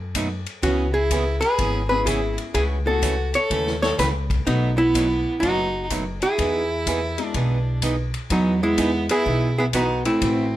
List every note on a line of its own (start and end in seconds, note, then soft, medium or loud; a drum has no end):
0.00 0.43 F#2 medium
0.15 0.27 B2 medium
0.15 0.27 F#3 medium
0.15 0.27 A3 medium
0.15 0.27 D#4 medium
0.15 0.27 F#4 medium
0.15 kick soft
0.15 hi-hat pedal medium
0.15 ride medium
0.46 ride soft
0.62 1.40 C#2 medium
0.62 0.85 C#3 medium
0.62 0.85 E3 soft
0.62 0.85 B3 medium
0.62 0.92 C#4 medium
0.62 0.85 C#4 medium
0.62 0.93 F#4 medium
0.62 0.85 G#4 medium
0.62 kick soft
0.62 ride medium
0.93 1.38 E4 medium
0.93 1.43 G#4 medium
1.11 1.23 C#3 medium
1.11 1.23 E3 medium
1.11 1.23 B3 medium
1.11 1.23 C#4 medium
1.11 1.23 G#4 medium
1.11 kick soft
1.11 hi-hat pedal medium
1.11 ride medium
1.41 1.86 G#4 medium
1.41 1.88 B4 loud
1.41 ride soft
1.58 2.35 G#1 medium
1.58 1.81 C#3 medium
1.58 1.81 E3 medium
1.58 1.81 B3 medium
1.58 1.81 C#4 medium
1.58 1.81 G#4 medium
1.58 kick soft
1.58 ride medium
1.88 2.52 B3 medium
1.88 2.52 C#4 medium
1.88 2.52 E4 medium
1.88 2.05 G#4 medium
1.88 2.52 G#4 medium
1.88 2.07 B4 medium
2.06 2.18 C#3 medium
2.06 2.18 E3 medium
2.06 2.18 B3 medium
2.06 2.19 C#4 medium
2.06 2.35 E4 medium
2.06 2.36 G#4 medium
2.06 2.19 G#4 medium
2.06 kick soft
2.06 hi-hat pedal medium
2.06 ride medium
2.38 ride soft
2.54 3.31 C#2 medium
2.54 2.77 C#3 medium
2.54 2.77 E3 medium
2.54 2.77 A3 medium
2.54 2.77 C#4 medium
2.54 2.69 E4 medium
2.54 2.77 F#4 medium
2.54 2.63 G#4 medium
2.54 kick soft
2.54 ride medium
2.86 3.01 A3 medium
2.86 3.01 B3 medium
2.86 3.01 E4 medium
2.86 3.31 F#4 medium
2.86 3.02 G#4 medium
2.86 3.36 A4 medium
3.02 3.14 C#3 medium
3.02 3.14 E3 medium
3.02 3.14 A3 medium
3.02 3.14 C#4 medium
3.02 3.15 F#4 medium
3.02 kick soft
3.02 hi-hat pedal medium
3.02 ride medium
3.34 3.79 A4 medium
3.34 3.81 C#5 loud
3.34 ride soft
3.50 3.91 D#2 medium
3.50 3.73 C#3 medium
3.50 3.73 E3 medium
3.50 3.73 A3 medium
3.50 3.73 C#4 medium
3.50 3.73 F#4 medium
3.50 kick soft
3.50 ride medium
3.67 snare soft
3.82 3.98 A4 medium
3.82 3.99 C#5 medium
3.82 snare soft
3.98 4.40 C#2 medium
3.98 4.10 C#3 medium
3.98 4.10 E3 medium
3.98 4.11 A3 medium
3.98 4.11 C#4 medium
3.98 4.11 F#4 medium
3.98 4.12 G#4 medium
3.98 4.08 B4 medium
3.98 kick soft
3.98 snare soft
3.98 hi-hat pedal medium
3.98 ride medium
4.30 kick medium
4.30 ride soft
4.46 5.23 B1 medium
4.46 4.69 B2 medium
4.46 4.69 F#3 medium
4.46 4.69 A3 medium
4.46 5.81 A3 medium
4.46 4.75 B3 medium
4.46 5.81 B3 medium
4.46 4.77 D#4 medium
4.46 4.69 D#4 medium
4.46 4.69 F#4 medium
4.46 5.81 F#4 medium
4.46 5.81 D#5 medium
4.46 kick soft
4.46 ride medium
4.76 5.37 B3 medium
4.76 5.39 E4 medium
4.94 5.06 B2 medium
4.94 5.06 F#3 medium
4.94 5.07 A3 medium
4.94 5.07 D#4 medium
4.94 5.07 F#4 medium
4.94 kick soft
4.94 hi-hat pedal medium
4.94 ride medium
5.40 6.19 F#1 medium
5.40 5.65 B2 medium
5.40 5.65 F#3 medium
5.40 5.65 A3 medium
5.40 5.86 D#4 medium
5.40 5.65 D#4 medium
5.40 5.86 F#4 medium
5.40 5.65 F#4 medium
5.40 kick soft
5.40 ride soft
5.90 6.02 B2 medium
5.90 6.02 F#3 medium
5.90 6.03 A3 medium
5.90 6.03 D#4 medium
5.90 6.03 F#4 medium
5.90 kick soft
5.90 hi-hat pedal medium
5.90 ride medium
6.21 7.25 E4 medium
6.21 7.26 G#4 loud
6.21 ride soft
6.38 7.15 E2 medium
6.38 6.61 E3 medium
6.38 6.61 B3 soft
6.38 6.61 D#4 medium
6.38 6.61 G#4 medium
6.38 kick soft
6.38 ride medium
6.86 6.98 E3 medium
6.86 6.99 B3 medium
6.86 6.99 D#4 medium
6.86 6.99 G#4 medium
6.86 kick soft
6.86 hi-hat pedal medium
6.86 ride medium
7.18 7.79 G#3 medium
7.18 7.79 B3 medium
7.18 7.80 E4 medium
7.18 7.80 D#5 medium
7.18 ride soft
7.25 7.78 D4 medium
7.25 7.79 F#4 loud
7.34 8.11 B1 medium
7.34 7.57 E3 medium
7.34 7.57 B3 medium
7.34 7.57 D#4 medium
7.34 7.57 G#4 medium
7.34 kick soft
7.34 ride medium
7.82 7.94 E3 medium
7.82 7.94 B3 medium
7.82 7.95 D#4 medium
7.82 7.95 G#4 medium
7.82 kick soft
7.82 hi-hat pedal medium
7.82 ride medium
8.14 ride soft
8.30 9.07 E2 medium
8.30 8.52 E3 medium
8.30 8.60 F#3 medium
8.30 8.60 B3 medium
8.30 8.53 B3 medium
8.30 8.53 D#4 medium
8.30 8.63 D#4 medium
8.30 8.53 G#4 medium
8.30 kick soft
8.30 ride medium
8.63 9.07 G#3 medium
8.63 9.07 B3 medium
8.63 9.07 E4 medium
8.78 8.90 E3 medium
8.78 8.90 B3 medium
8.78 8.90 D#4 medium
8.78 8.90 G#4 medium
8.78 kick soft
8.78 hi-hat pedal medium
8.78 ride medium
9.09 9.55 B3 medium
9.09 9.55 E4 medium
9.09 9.57 G#4 medium
9.09 ride medium
9.26 10.03 B1 medium
9.26 9.48 E3 medium
9.26 9.48 B3 medium
9.26 9.48 D#4 medium
9.26 9.49 G#4 medium
9.26 kick soft
9.58 9.65 B3 medium
9.58 9.66 E4 medium
9.58 9.63 G#4 medium
9.73 9.86 E3 medium
9.73 9.86 B3 medium
9.73 10.04 B3 medium
9.73 10.03 D#4 medium
9.73 9.86 D#4 medium
9.73 10.05 F#4 medium
9.73 9.86 G#4 medium
9.73 kick soft
9.73 hi-hat pedal medium
9.73 ride medium
10.05 10.56 A3 medium
10.05 10.56 C4 medium
10.05 10.56 E4 medium
10.05 ride soft
10.21 10.56 A1 medium
10.21 10.44 C3 medium
10.21 10.44 E3 medium
10.21 10.44 A3 medium
10.21 10.56 A3 medium
10.21 10.56 C4 medium
10.21 10.44 E4 medium
10.21 10.56 E4 medium
10.21 10.44 F#4 medium
10.21 10.56 F#4 medium
10.21 kick soft
10.21 ride medium